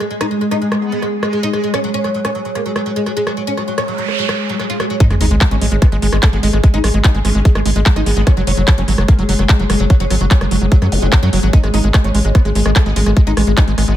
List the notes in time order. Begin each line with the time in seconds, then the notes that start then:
Already playing: G#3 G#4
0.00 G#3, cross-stick
0.11 G#3
0.21 D#4, cross-stick
0.31 G#3
0.41 G#3
0.51 D#4, cross-stick
0.62 G#3
0.72 G#3, cross-stick
0.82 B3
0.92 G#3
1.02 G#3, cross-stick
1.23 G#3, cross-stick
1.33 G#3
1.43 D#4
1.53 G#3, cross-stick
1.64 G#3
1.74 C#4, cross-stick
1.84 F#3
1.94 C#4
2.04 F#3, cross-stick
2.15 F#3
2.25 C#4, cross-stick
2.35 F#3
2.45 F#3
2.55 A#3, cross-stick
2.66 F#3
2.76 F#3, cross-stick
2.86 F#3
2.96 G#3
3.06 F#3, cross-stick
3.17 G#3
3.27 F#3, cross-stick
3.37 F#3, noise sweep
3.47 C#4
3.57 F#3, cross-stick
3.68 F#3
3.78 C#4, cross-stick
3.88 F#3
3.98 F#3
4.08 cross-stick
4.19 F#3
4.29 F#3, cross-stick
4.49 F#3
4.59 F#3, cross-stick
4.70 F4
4.80 F#3, cross-stick
4.90 F#3
5.00 G#3 D#4 G#4, kick, closed hi-hat, sub drop
5.10 G#1 G#3, cross-stick, closed hi-hat
5.21 G#1 G#3 D#4, open hi-hat
5.31 G#1 G#3, closed hi-hat
5.41 G#3, kick, cross-stick, clap, closed hi-hat
5.51 G#1 G#3 C#4, closed hi-hat
5.61 A1 G#3, open hi-hat
5.72 G#1 G#3
5.82 G#3 B3, kick, cross-stick, closed hi-hat
5.92 G#1 G#3, closed hi-hat
6.02 G#1 G#3, open hi-hat
6.13 G#1 G#3, cross-stick, closed hi-hat
6.23 G#3 A3 B3, kick, clap, closed hi-hat
6.33 G#1 G#3 B3, closed hi-hat
6.43 G#1 G#3, open hi-hat
6.53 G#1 G#3, cross-stick
6.63 G#3, kick, closed hi-hat
6.74 G#1 G#3 D#4, closed hi-hat
6.84 A1 G#3, cross-stick, open hi-hat
6.94 G#1 G#3, closed hi-hat
7.04 G#3 D#4, kick, clap, closed hi-hat
7.15 G#1 G#3, closed hi-hat
7.25 G#1 G#3 C#4, cross-stick, open hi-hat
7.35 G#1 G#3 C#4, closed hi-hat
7.45 G#3, kick, closed hi-hat
7.55 G#1 G#3, cross-stick, closed hi-hat
7.66 G#1 G#3, open hi-hat
7.76 G#1 G#3
7.86 G#3, kick, clap, closed hi-hat
7.96 G#1 G#3 D#4, cross-stick, closed hi-hat
8.06 G#1 G#3 B3, open hi-hat
8.17 G#1 G#3 B3, closed hi-hat
8.27 F#3 C#4, kick, cross-stick, closed hi-hat
8.37 F#1 F#3, closed hi-hat
8.47 F#1 F#3 C#4, open hi-hat
8.57 F#1 F#3, closed hi-hat
8.68 F#3, kick, cross-stick, clap, closed hi-hat
8.78 F#1 F#3 C#4, closed hi-hat
8.88 G#1 F#3, open hi-hat
8.98 F#1 F#3, cross-stick, closed hi-hat
9.08 F#3 A#3, kick, closed hi-hat
9.19 F#1 F#3, closed hi-hat
9.29 F#1 F#3, open hi-hat
9.39 F#1 F#3, cross-stick
9.49 F#3 G#3, kick, clap, closed hi-hat
9.59 F#1 F#3, closed hi-hat
9.70 F#1 F#3 G#3, cross-stick, open hi-hat
9.80 F#1 F#3, closed hi-hat
9.90 F#3, kick, closed hi-hat
10.00 F#1 F#3 C#4, closed hi-hat
10.10 G#1 F#3, cross-stick, open hi-hat
10.21 F#1 F#3, closed hi-hat
10.31 F#3 C#4, kick, clap, closed hi-hat
10.41 F#1 F#3, cross-stick, closed hi-hat
10.51 F#1 F#3, open hi-hat
10.61 F#1 F#3
10.72 F#3, kick, closed hi-hat
10.82 F#2 F#3, cross-stick, closed hi-hat
10.92 F#1, open hi-hat, zap
11.02 F#1 F#3 G#3, closed hi-hat
11.12 F#3, kick, cross-stick, clap, closed hi-hat
11.23 F#2 F#3, closed hi-hat
11.33 F#1 F#3, open hi-hat
11.43 G#1 F#3, closed hi-hat
11.53 G#3 D#4, kick, closed hi-hat
11.64 G#1 G#3, cross-stick, closed hi-hat
11.74 G#1 G#3 D#4, open hi-hat
11.84 G#1 G#3, closed hi-hat
11.94 G#3, kick, cross-stick, clap, closed hi-hat
12.04 G#1 G#3 C#4, closed hi-hat
12.15 A1 G#3, open hi-hat
12.25 G#1 G#3
12.35 G#3 B3, kick, cross-stick, closed hi-hat
12.45 G#1 G#3, closed hi-hat
12.55 G#1 G#3, open hi-hat
12.66 G#1 G#3, cross-stick, closed hi-hat
12.76 G#3 A3 B3, kick, clap, closed hi-hat
12.86 G#1 G#3 B3, closed hi-hat
12.96 G#1 G#3, open hi-hat
13.06 G#1 G#3, cross-stick, closed hi-hat
13.17 G#3, kick, closed hi-hat
13.27 G#1 G#3 D#4, closed hi-hat
13.37 A1 G#3, cross-stick, open hi-hat
13.47 G#1 G#3, closed hi-hat
13.57 G#3 D#4, kick, clap, closed hi-hat
13.68 G#1 G#3, closed hi-hat
13.78 G#1 G#3, cross-stick, open hi-hat
13.88 G#1 G#3 B3, closed hi-hat